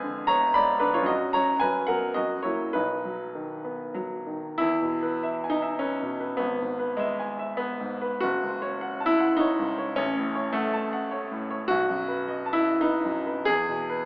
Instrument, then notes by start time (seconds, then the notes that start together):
grand piano
Already playing: F2 G#3 B4 G#5
0.03 D3
0.27 B3 C#5 A#5
0.54 G#3 D5 B5
0.80 D3 D4 B4
0.94 F4 C#5
1.02 F#2
1.06 F#4 D#5
1.33 F#3 C#4 C#5 A#5
1.60 F#2 B4 G#5
1.87 F#3 B3 A#4 F#5
2.14 F#2 F#4 D#5
2.43 F#3 A#3 E4 C#5
2.73 B1 D#4 B4
3.05 F#3
3.35 D#3
3.64 B3
3.94 F#3
4.27 D#3
4.58 E2 E4
4.82 B2
5.03 B4
5.23 E5
5.44 G#5
5.50 D#4
5.62 E5
5.79 C#4 B4
6.02 B2
6.20 B4
6.37 G#1 B3
6.62 G#2
6.79 B4
6.97 G#3 E5
7.19 G#5
7.39 E5
7.57 B3 B4
7.80 G#2
8.01 B4
8.20 F#1 F#4
8.43 C#2
8.62 C#5
8.81 F#5
9.00 A5
9.06 E4
9.19 F#5
9.37 D#4 C#5
9.59 C#2
9.78 C#5
9.96 A1 C#4
10.17 A2
10.35 C#5
10.53 A3 F#5
10.73 A5
10.93 F#5
11.11 C#5
11.31 A2
11.50 C#5
11.68 B1 F#4
11.90 F#2
12.08 B4
12.28 D#5
12.46 A5
12.53 E4
12.65 D#5
12.81 D#4 B4
13.05 F#2
13.27 B4
13.45 E2 G#4
13.68 B2
13.89 B4